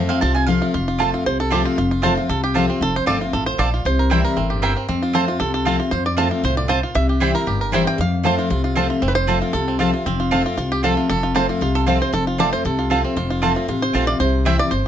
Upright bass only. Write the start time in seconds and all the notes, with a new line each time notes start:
0.22 C2
0.75 F1
1.26 C2
1.78 F1
2.29 C2
2.81 F1
3.07 G1
3.33 A1
3.59 A#1
3.85 C2
4.37 G1
4.89 F2
5.40 C2
5.92 F2
6.44 C2
6.95 C2
7.47 G1
7.99 F2
8.51 C2
9.02 F1
9.54 C2
10.06 F1
10.57 C2
11.10 F1
11.61 C2
12.13 F1
12.65 C2
13.16 F1
13.68 A1
13.95 A#1
14.20 C2
14.72 G1